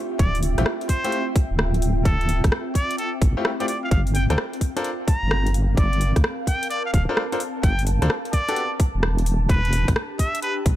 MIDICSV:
0, 0, Header, 1, 6, 480
1, 0, Start_track
1, 0, Tempo, 465116
1, 200, Time_signature, 4, 2, 24, 8
1, 11105, End_track
2, 0, Start_track
2, 0, Title_t, "Muted trumpet"
2, 0, Program_c, 0, 59
2, 196, Note_on_c, 0, 74, 89
2, 388, Note_off_c, 0, 74, 0
2, 918, Note_on_c, 0, 72, 88
2, 1319, Note_off_c, 0, 72, 0
2, 2117, Note_on_c, 0, 69, 88
2, 2518, Note_off_c, 0, 69, 0
2, 2839, Note_on_c, 0, 74, 91
2, 3063, Note_off_c, 0, 74, 0
2, 3080, Note_on_c, 0, 69, 88
2, 3208, Note_off_c, 0, 69, 0
2, 3719, Note_on_c, 0, 74, 85
2, 3771, Note_off_c, 0, 74, 0
2, 3799, Note_on_c, 0, 74, 79
2, 3902, Note_off_c, 0, 74, 0
2, 3958, Note_on_c, 0, 77, 85
2, 4010, Note_off_c, 0, 77, 0
2, 4037, Note_on_c, 0, 77, 73
2, 4140, Note_off_c, 0, 77, 0
2, 4277, Note_on_c, 0, 79, 85
2, 4381, Note_off_c, 0, 79, 0
2, 4438, Note_on_c, 0, 79, 70
2, 4490, Note_off_c, 0, 79, 0
2, 5238, Note_on_c, 0, 82, 88
2, 5719, Note_off_c, 0, 82, 0
2, 5959, Note_on_c, 0, 74, 89
2, 6359, Note_off_c, 0, 74, 0
2, 6679, Note_on_c, 0, 79, 86
2, 6903, Note_off_c, 0, 79, 0
2, 6916, Note_on_c, 0, 74, 89
2, 7046, Note_off_c, 0, 74, 0
2, 7077, Note_on_c, 0, 77, 86
2, 7130, Note_off_c, 0, 77, 0
2, 7157, Note_on_c, 0, 77, 75
2, 7261, Note_off_c, 0, 77, 0
2, 7875, Note_on_c, 0, 79, 89
2, 8068, Note_off_c, 0, 79, 0
2, 8598, Note_on_c, 0, 74, 92
2, 8999, Note_off_c, 0, 74, 0
2, 9798, Note_on_c, 0, 71, 94
2, 10198, Note_off_c, 0, 71, 0
2, 10519, Note_on_c, 0, 76, 88
2, 10743, Note_off_c, 0, 76, 0
2, 10759, Note_on_c, 0, 71, 92
2, 10887, Note_off_c, 0, 71, 0
2, 11105, End_track
3, 0, Start_track
3, 0, Title_t, "Ambient pad"
3, 0, Program_c, 1, 92
3, 0, Note_on_c, 1, 60, 88
3, 0, Note_on_c, 1, 65, 76
3, 0, Note_on_c, 1, 76, 71
3, 0, Note_on_c, 1, 79, 92
3, 3799, Note_off_c, 1, 76, 0
3, 4218, Note_on_c, 1, 70, 88
3, 4333, Note_on_c, 1, 77, 69
3, 5065, Note_off_c, 1, 65, 0
3, 5461, Note_off_c, 1, 79, 0
3, 5874, Note_on_c, 1, 81, 79
3, 8599, Note_off_c, 1, 60, 0
3, 8599, Note_off_c, 1, 70, 0
3, 8600, Note_off_c, 1, 77, 0
3, 8603, Note_on_c, 1, 62, 71
3, 8961, Note_on_c, 1, 67, 81
3, 9491, Note_on_c, 1, 79, 85
3, 11105, Note_off_c, 1, 62, 0
3, 11105, Note_off_c, 1, 67, 0
3, 11105, Note_off_c, 1, 79, 0
3, 11105, Note_off_c, 1, 81, 0
3, 11105, End_track
4, 0, Start_track
4, 0, Title_t, "Grand piano"
4, 0, Program_c, 2, 0
4, 599, Note_on_c, 2, 60, 78
4, 599, Note_on_c, 2, 64, 84
4, 599, Note_on_c, 2, 67, 99
4, 600, Note_on_c, 2, 57, 84
4, 600, Note_on_c, 2, 65, 77
4, 661, Note_off_c, 2, 60, 0
4, 661, Note_off_c, 2, 64, 0
4, 661, Note_off_c, 2, 65, 0
4, 661, Note_off_c, 2, 67, 0
4, 662, Note_off_c, 2, 57, 0
4, 1078, Note_on_c, 2, 57, 93
4, 1078, Note_on_c, 2, 60, 85
4, 1078, Note_on_c, 2, 64, 86
4, 1078, Note_on_c, 2, 65, 84
4, 1078, Note_on_c, 2, 67, 105
4, 1196, Note_off_c, 2, 57, 0
4, 1196, Note_off_c, 2, 60, 0
4, 1196, Note_off_c, 2, 64, 0
4, 1196, Note_off_c, 2, 65, 0
4, 1196, Note_off_c, 2, 67, 0
4, 3478, Note_on_c, 2, 60, 80
4, 3478, Note_on_c, 2, 64, 79
4, 3478, Note_on_c, 2, 65, 81
4, 3478, Note_on_c, 2, 67, 96
4, 3479, Note_on_c, 2, 57, 86
4, 3596, Note_off_c, 2, 57, 0
4, 3596, Note_off_c, 2, 60, 0
4, 3596, Note_off_c, 2, 64, 0
4, 3596, Note_off_c, 2, 65, 0
4, 3596, Note_off_c, 2, 67, 0
4, 3718, Note_on_c, 2, 57, 72
4, 3718, Note_on_c, 2, 60, 67
4, 3718, Note_on_c, 2, 64, 67
4, 3718, Note_on_c, 2, 65, 66
4, 3718, Note_on_c, 2, 67, 85
4, 3780, Note_off_c, 2, 60, 0
4, 3781, Note_off_c, 2, 57, 0
4, 3781, Note_off_c, 2, 64, 0
4, 3781, Note_off_c, 2, 65, 0
4, 3781, Note_off_c, 2, 67, 0
4, 4438, Note_on_c, 2, 65, 85
4, 4438, Note_on_c, 2, 69, 80
4, 4438, Note_on_c, 2, 70, 79
4, 4438, Note_on_c, 2, 72, 97
4, 4439, Note_on_c, 2, 62, 86
4, 4500, Note_off_c, 2, 65, 0
4, 4500, Note_off_c, 2, 70, 0
4, 4501, Note_off_c, 2, 62, 0
4, 4501, Note_off_c, 2, 69, 0
4, 4501, Note_off_c, 2, 72, 0
4, 4918, Note_on_c, 2, 62, 97
4, 4918, Note_on_c, 2, 65, 87
4, 4918, Note_on_c, 2, 69, 87
4, 4918, Note_on_c, 2, 70, 90
4, 4918, Note_on_c, 2, 72, 101
4, 5036, Note_off_c, 2, 62, 0
4, 5036, Note_off_c, 2, 65, 0
4, 5036, Note_off_c, 2, 69, 0
4, 5036, Note_off_c, 2, 70, 0
4, 5036, Note_off_c, 2, 72, 0
4, 7318, Note_on_c, 2, 69, 78
4, 7318, Note_on_c, 2, 70, 80
4, 7319, Note_on_c, 2, 62, 88
4, 7319, Note_on_c, 2, 65, 82
4, 7319, Note_on_c, 2, 72, 95
4, 7436, Note_off_c, 2, 62, 0
4, 7436, Note_off_c, 2, 65, 0
4, 7436, Note_off_c, 2, 69, 0
4, 7436, Note_off_c, 2, 70, 0
4, 7436, Note_off_c, 2, 72, 0
4, 7558, Note_on_c, 2, 62, 76
4, 7558, Note_on_c, 2, 70, 71
4, 7558, Note_on_c, 2, 72, 78
4, 7559, Note_on_c, 2, 65, 71
4, 7559, Note_on_c, 2, 69, 70
4, 7621, Note_off_c, 2, 62, 0
4, 7621, Note_off_c, 2, 65, 0
4, 7621, Note_off_c, 2, 69, 0
4, 7621, Note_off_c, 2, 70, 0
4, 7621, Note_off_c, 2, 72, 0
4, 8276, Note_on_c, 2, 70, 80
4, 8277, Note_on_c, 2, 62, 91
4, 8277, Note_on_c, 2, 65, 83
4, 8277, Note_on_c, 2, 69, 82
4, 8277, Note_on_c, 2, 72, 98
4, 8340, Note_off_c, 2, 62, 0
4, 8340, Note_off_c, 2, 65, 0
4, 8340, Note_off_c, 2, 69, 0
4, 8340, Note_off_c, 2, 70, 0
4, 8340, Note_off_c, 2, 72, 0
4, 8757, Note_on_c, 2, 59, 93
4, 8757, Note_on_c, 2, 62, 89
4, 8758, Note_on_c, 2, 66, 88
4, 8758, Note_on_c, 2, 67, 88
4, 8758, Note_on_c, 2, 69, 108
4, 8876, Note_off_c, 2, 59, 0
4, 8876, Note_off_c, 2, 62, 0
4, 8876, Note_off_c, 2, 66, 0
4, 8876, Note_off_c, 2, 67, 0
4, 8876, Note_off_c, 2, 69, 0
4, 11105, End_track
5, 0, Start_track
5, 0, Title_t, "Wobble bass"
5, 0, Program_c, 3, 39
5, 199, Note_on_c, 3, 26, 98
5, 570, Note_off_c, 3, 26, 0
5, 599, Note_on_c, 3, 33, 79
5, 671, Note_off_c, 3, 33, 0
5, 1560, Note_on_c, 3, 26, 90
5, 2105, Note_off_c, 3, 26, 0
5, 2118, Note_on_c, 3, 26, 98
5, 2490, Note_off_c, 3, 26, 0
5, 2519, Note_on_c, 3, 33, 80
5, 2591, Note_off_c, 3, 33, 0
5, 3318, Note_on_c, 3, 33, 81
5, 3460, Note_off_c, 3, 33, 0
5, 4038, Note_on_c, 3, 31, 94
5, 4410, Note_off_c, 3, 31, 0
5, 4437, Note_on_c, 3, 38, 80
5, 4509, Note_off_c, 3, 38, 0
5, 5398, Note_on_c, 3, 31, 86
5, 5944, Note_off_c, 3, 31, 0
5, 5958, Note_on_c, 3, 31, 102
5, 6330, Note_off_c, 3, 31, 0
5, 6358, Note_on_c, 3, 38, 79
5, 6430, Note_off_c, 3, 38, 0
5, 7158, Note_on_c, 3, 26, 82
5, 7300, Note_off_c, 3, 26, 0
5, 7878, Note_on_c, 3, 31, 100
5, 8249, Note_off_c, 3, 31, 0
5, 8277, Note_on_c, 3, 38, 79
5, 8350, Note_off_c, 3, 38, 0
5, 9238, Note_on_c, 3, 28, 87
5, 9785, Note_off_c, 3, 28, 0
5, 9798, Note_on_c, 3, 28, 101
5, 10169, Note_off_c, 3, 28, 0
5, 10198, Note_on_c, 3, 35, 78
5, 10270, Note_off_c, 3, 35, 0
5, 10999, Note_on_c, 3, 35, 81
5, 11105, Note_off_c, 3, 35, 0
5, 11105, End_track
6, 0, Start_track
6, 0, Title_t, "Drums"
6, 199, Note_on_c, 9, 36, 121
6, 200, Note_on_c, 9, 42, 62
6, 302, Note_off_c, 9, 36, 0
6, 303, Note_off_c, 9, 42, 0
6, 361, Note_on_c, 9, 46, 61
6, 439, Note_off_c, 9, 46, 0
6, 439, Note_on_c, 9, 46, 104
6, 543, Note_off_c, 9, 46, 0
6, 599, Note_on_c, 9, 37, 67
6, 599, Note_on_c, 9, 42, 58
6, 679, Note_off_c, 9, 37, 0
6, 679, Note_on_c, 9, 37, 118
6, 702, Note_off_c, 9, 42, 0
6, 782, Note_off_c, 9, 37, 0
6, 839, Note_on_c, 9, 42, 34
6, 918, Note_on_c, 9, 46, 100
6, 920, Note_on_c, 9, 36, 59
6, 942, Note_off_c, 9, 42, 0
6, 1021, Note_off_c, 9, 46, 0
6, 1023, Note_off_c, 9, 36, 0
6, 1078, Note_on_c, 9, 42, 61
6, 1159, Note_off_c, 9, 42, 0
6, 1159, Note_on_c, 9, 42, 58
6, 1262, Note_off_c, 9, 42, 0
6, 1399, Note_on_c, 9, 36, 115
6, 1399, Note_on_c, 9, 46, 97
6, 1502, Note_off_c, 9, 36, 0
6, 1503, Note_off_c, 9, 46, 0
6, 1639, Note_on_c, 9, 37, 122
6, 1742, Note_off_c, 9, 37, 0
6, 1799, Note_on_c, 9, 42, 47
6, 1880, Note_on_c, 9, 46, 102
6, 1903, Note_off_c, 9, 42, 0
6, 1983, Note_off_c, 9, 46, 0
6, 2119, Note_on_c, 9, 36, 123
6, 2121, Note_on_c, 9, 42, 60
6, 2222, Note_off_c, 9, 36, 0
6, 2224, Note_off_c, 9, 42, 0
6, 2281, Note_on_c, 9, 42, 36
6, 2361, Note_on_c, 9, 46, 102
6, 2384, Note_off_c, 9, 42, 0
6, 2464, Note_off_c, 9, 46, 0
6, 2519, Note_on_c, 9, 36, 108
6, 2521, Note_on_c, 9, 37, 66
6, 2521, Note_on_c, 9, 42, 60
6, 2601, Note_off_c, 9, 37, 0
6, 2601, Note_on_c, 9, 37, 118
6, 2622, Note_off_c, 9, 36, 0
6, 2624, Note_off_c, 9, 42, 0
6, 2704, Note_off_c, 9, 37, 0
6, 2839, Note_on_c, 9, 36, 61
6, 2840, Note_on_c, 9, 46, 97
6, 2942, Note_off_c, 9, 36, 0
6, 2944, Note_off_c, 9, 46, 0
6, 2999, Note_on_c, 9, 42, 62
6, 3080, Note_off_c, 9, 42, 0
6, 3080, Note_on_c, 9, 42, 57
6, 3183, Note_off_c, 9, 42, 0
6, 3318, Note_on_c, 9, 36, 112
6, 3319, Note_on_c, 9, 46, 94
6, 3421, Note_off_c, 9, 36, 0
6, 3423, Note_off_c, 9, 46, 0
6, 3559, Note_on_c, 9, 37, 123
6, 3662, Note_off_c, 9, 37, 0
6, 3718, Note_on_c, 9, 42, 48
6, 3799, Note_on_c, 9, 46, 100
6, 3821, Note_off_c, 9, 42, 0
6, 3902, Note_off_c, 9, 46, 0
6, 4038, Note_on_c, 9, 36, 120
6, 4039, Note_on_c, 9, 42, 61
6, 4142, Note_off_c, 9, 36, 0
6, 4143, Note_off_c, 9, 42, 0
6, 4198, Note_on_c, 9, 46, 57
6, 4279, Note_off_c, 9, 46, 0
6, 4279, Note_on_c, 9, 46, 98
6, 4382, Note_off_c, 9, 46, 0
6, 4439, Note_on_c, 9, 37, 63
6, 4439, Note_on_c, 9, 42, 59
6, 4519, Note_off_c, 9, 37, 0
6, 4519, Note_on_c, 9, 37, 121
6, 4542, Note_off_c, 9, 42, 0
6, 4623, Note_off_c, 9, 37, 0
6, 4679, Note_on_c, 9, 42, 35
6, 4759, Note_on_c, 9, 36, 60
6, 4760, Note_on_c, 9, 46, 98
6, 4782, Note_off_c, 9, 42, 0
6, 4862, Note_off_c, 9, 36, 0
6, 4863, Note_off_c, 9, 46, 0
6, 4919, Note_on_c, 9, 42, 62
6, 4999, Note_off_c, 9, 42, 0
6, 4999, Note_on_c, 9, 42, 60
6, 5103, Note_off_c, 9, 42, 0
6, 5238, Note_on_c, 9, 36, 110
6, 5240, Note_on_c, 9, 46, 94
6, 5342, Note_off_c, 9, 36, 0
6, 5343, Note_off_c, 9, 46, 0
6, 5480, Note_on_c, 9, 37, 119
6, 5583, Note_off_c, 9, 37, 0
6, 5641, Note_on_c, 9, 42, 50
6, 5721, Note_on_c, 9, 46, 95
6, 5744, Note_off_c, 9, 42, 0
6, 5824, Note_off_c, 9, 46, 0
6, 5958, Note_on_c, 9, 36, 114
6, 5961, Note_on_c, 9, 42, 64
6, 6062, Note_off_c, 9, 36, 0
6, 6064, Note_off_c, 9, 42, 0
6, 6120, Note_on_c, 9, 42, 36
6, 6200, Note_on_c, 9, 46, 101
6, 6223, Note_off_c, 9, 42, 0
6, 6303, Note_off_c, 9, 46, 0
6, 6358, Note_on_c, 9, 36, 103
6, 6360, Note_on_c, 9, 37, 62
6, 6360, Note_on_c, 9, 42, 64
6, 6440, Note_off_c, 9, 37, 0
6, 6440, Note_on_c, 9, 37, 115
6, 6462, Note_off_c, 9, 36, 0
6, 6464, Note_off_c, 9, 42, 0
6, 6543, Note_off_c, 9, 37, 0
6, 6678, Note_on_c, 9, 36, 58
6, 6680, Note_on_c, 9, 46, 100
6, 6782, Note_off_c, 9, 36, 0
6, 6784, Note_off_c, 9, 46, 0
6, 6840, Note_on_c, 9, 42, 69
6, 6920, Note_off_c, 9, 42, 0
6, 6920, Note_on_c, 9, 42, 64
6, 7023, Note_off_c, 9, 42, 0
6, 7158, Note_on_c, 9, 36, 102
6, 7159, Note_on_c, 9, 46, 96
6, 7262, Note_off_c, 9, 36, 0
6, 7262, Note_off_c, 9, 46, 0
6, 7399, Note_on_c, 9, 37, 115
6, 7502, Note_off_c, 9, 37, 0
6, 7559, Note_on_c, 9, 42, 51
6, 7638, Note_on_c, 9, 46, 98
6, 7662, Note_off_c, 9, 42, 0
6, 7741, Note_off_c, 9, 46, 0
6, 7878, Note_on_c, 9, 36, 110
6, 7879, Note_on_c, 9, 42, 66
6, 7981, Note_off_c, 9, 36, 0
6, 7982, Note_off_c, 9, 42, 0
6, 8037, Note_on_c, 9, 46, 61
6, 8118, Note_off_c, 9, 46, 0
6, 8118, Note_on_c, 9, 46, 103
6, 8221, Note_off_c, 9, 46, 0
6, 8277, Note_on_c, 9, 37, 61
6, 8277, Note_on_c, 9, 42, 66
6, 8358, Note_off_c, 9, 37, 0
6, 8358, Note_on_c, 9, 37, 110
6, 8381, Note_off_c, 9, 42, 0
6, 8461, Note_off_c, 9, 37, 0
6, 8517, Note_on_c, 9, 42, 37
6, 8597, Note_on_c, 9, 46, 104
6, 8598, Note_on_c, 9, 36, 59
6, 8621, Note_off_c, 9, 42, 0
6, 8700, Note_off_c, 9, 46, 0
6, 8701, Note_off_c, 9, 36, 0
6, 8757, Note_on_c, 9, 42, 69
6, 8838, Note_off_c, 9, 42, 0
6, 8838, Note_on_c, 9, 42, 63
6, 8941, Note_off_c, 9, 42, 0
6, 9078, Note_on_c, 9, 36, 106
6, 9078, Note_on_c, 9, 46, 101
6, 9181, Note_off_c, 9, 36, 0
6, 9181, Note_off_c, 9, 46, 0
6, 9318, Note_on_c, 9, 37, 114
6, 9421, Note_off_c, 9, 37, 0
6, 9479, Note_on_c, 9, 42, 51
6, 9559, Note_on_c, 9, 46, 106
6, 9582, Note_off_c, 9, 42, 0
6, 9662, Note_off_c, 9, 46, 0
6, 9798, Note_on_c, 9, 36, 116
6, 9799, Note_on_c, 9, 42, 70
6, 9901, Note_off_c, 9, 36, 0
6, 9902, Note_off_c, 9, 42, 0
6, 9959, Note_on_c, 9, 42, 37
6, 10038, Note_on_c, 9, 46, 109
6, 10062, Note_off_c, 9, 42, 0
6, 10141, Note_off_c, 9, 46, 0
6, 10198, Note_on_c, 9, 36, 99
6, 10199, Note_on_c, 9, 37, 63
6, 10199, Note_on_c, 9, 42, 67
6, 10279, Note_off_c, 9, 37, 0
6, 10279, Note_on_c, 9, 37, 108
6, 10301, Note_off_c, 9, 36, 0
6, 10302, Note_off_c, 9, 42, 0
6, 10382, Note_off_c, 9, 37, 0
6, 10518, Note_on_c, 9, 36, 57
6, 10519, Note_on_c, 9, 46, 105
6, 10621, Note_off_c, 9, 36, 0
6, 10622, Note_off_c, 9, 46, 0
6, 10678, Note_on_c, 9, 42, 73
6, 10758, Note_off_c, 9, 42, 0
6, 10758, Note_on_c, 9, 42, 67
6, 10862, Note_off_c, 9, 42, 0
6, 10998, Note_on_c, 9, 36, 103
6, 10998, Note_on_c, 9, 46, 106
6, 11101, Note_off_c, 9, 36, 0
6, 11101, Note_off_c, 9, 46, 0
6, 11105, End_track
0, 0, End_of_file